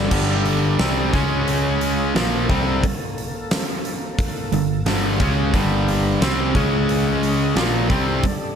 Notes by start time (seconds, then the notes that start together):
Already playing: G2 D3 G3
0.10 G1 G2 D3 G3 D4 A4, kick, crash
0.45 open hi-hat
0.79 C2 C3 G3 C4, snare, open hi-hat
1.12 C#2 C#3 G#3 C#4 G#4 D#5, kick, snare, open hi-hat
1.48 open hi-hat
1.81 open hi-hat
2.15 A#1 A#2 F3 A#3 A4, snare, open hi-hat
2.49 C2 C3 G3 C4, kick, open hi-hat
2.83 muted overdriven electric guitar stroke, muted picked electric bass stroke, muted distorted electric guitar stroke, kick, open hi-hat
3.18 open hi-hat
3.51 snare, open hi-hat
3.85 open hi-hat
4.19 kick, open hi-hat
4.52 G1 G2 D3, open hi-hat
4.85 G1 G2 D3 G3 G4, snare, open hi-hat
5.20 C#2 C#3 G#3 C#4, kick, open hi-hat
5.53 G1 G2 D3 G3, kick, open hi-hat
5.88 open hi-hat
6.21 C2 C3 G3 C4, snare, open hi-hat
6.54 C#2 C#3 G#3 C#4 G#4 D#5, kick, open hi-hat
6.89 open hi-hat
7.23 open hi-hat
7.56 A#1 A#2 F3 G3 A#3 D4 A4, snare, open hi-hat
7.89 C2 C3 G3 C4, kick, open hi-hat
8.23 muted distorted electric guitar stroke, muted picked electric bass stroke, muted overdriven electric guitar stroke, kick, open hi-hat